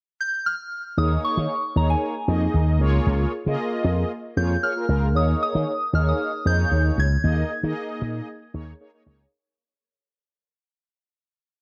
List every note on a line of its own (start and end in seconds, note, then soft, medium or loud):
0.21 0.47 G6 medium
0.46 0.99 F6 medium
0.97 1.16 D#2 loud
0.97 1.55 A#3 medium
0.97 1.55 D#4 medium
0.97 1.55 G#4 medium
0.97 1.55 C#5 medium
0.97 1.22 D#6 loud
1.25 1.78 C#6 medium
1.37 1.46 D#3 loud
1.76 1.94 D#2 medium
1.76 2.14 A#3 medium
1.76 2.15 D#4 medium
1.76 2.15 G#4 medium
1.76 2.15 C#5 medium
1.76 1.89 A#5 medium
1.90 2.76 G#5 medium
2.28 2.46 F2 loud
2.28 2.79 A#3 medium
2.28 2.80 D#4 medium
2.28 2.80 G#4 medium
2.28 2.81 D#5 medium
2.54 2.80 D#2 medium
2.80 2.98 C#2 loud
2.80 3.32 A#3 loud
2.80 3.32 F4 loud
2.80 3.33 G#4 medium
2.80 3.33 C#5 loud
3.06 3.25 C#2 loud
3.46 3.55 C#3 medium
3.46 4.12 A#3 loud
3.46 4.12 F4 medium
3.46 4.12 G#4 medium
3.46 4.12 D#5 loud
3.84 4.03 F2 medium
4.36 4.55 F2 medium
4.36 4.56 A#3 medium
4.36 4.56 F4 medium
4.36 4.56 G#4 medium
4.36 4.56 C#5 medium
4.36 4.64 G6 medium
4.62 4.73 A#3 medium
4.62 4.73 F4 medium
4.62 4.73 G#4 medium
4.62 4.73 C#5 medium
4.62 5.17 F6 medium
4.76 4.85 A#3 medium
4.76 4.85 F4 medium
4.76 4.86 G#4 medium
4.76 4.86 A#4 medium
4.89 5.15 C#2 loud
4.89 5.08 A#3 medium
4.89 5.08 F4 medium
4.89 5.08 G#4 medium
4.89 5.08 A#4 medium
5.14 5.33 D#2 loud
5.14 5.72 A#3 medium
5.14 5.72 D#4 medium
5.14 5.72 G#4 medium
5.14 5.72 C#5 medium
5.14 5.42 D#6 medium
5.43 5.95 D#6 medium
5.55 5.64 D#3 loud
5.93 6.11 D#2 medium
5.93 6.31 A#3 medium
5.93 6.32 D#4 medium
5.93 6.32 G#4 medium
5.93 6.32 C#5 medium
5.93 6.08 F6 medium
6.09 6.47 D#6 medium
6.45 6.64 F2 medium
6.45 7.02 A#3 medium
6.45 7.02 D#4 medium
6.45 7.03 G#4 medium
6.45 6.52 C5 medium
6.45 7.00 G6 loud
6.52 7.06 C#5 medium
6.71 6.90 D#2 medium
6.98 7.16 C#2 medium
6.98 8.77 G#6 medium
7.23 7.42 D#2 loud
7.23 7.52 A#3 medium
7.23 7.52 D#4 medium
7.23 7.52 G#4 medium
7.23 7.52 D#5 medium
7.63 7.72 D#3 loud
7.63 8.29 A#3 loud
7.63 8.29 D#4 medium
7.63 8.29 G#4 medium
7.63 8.29 D#5 loud
8.02 8.20 A#2 medium
8.54 8.72 D#2 medium
8.54 8.73 A#3 medium
8.54 8.73 D#4 medium
8.54 8.73 G#4 medium
8.54 8.74 C#5 loud
8.80 8.90 A#3 medium
8.80 8.90 D#4 medium
8.80 8.90 G#4 medium
8.80 8.91 C#5 loud
8.94 9.03 A#3 medium
8.94 9.03 D#4 medium
8.94 9.03 G#4 medium
8.94 9.03 C#5 loud
9.06 9.24 C#2 medium
9.06 9.25 A#3 loud
9.06 9.25 D#4 medium
9.06 9.26 G#4 medium
9.06 9.26 C#5 loud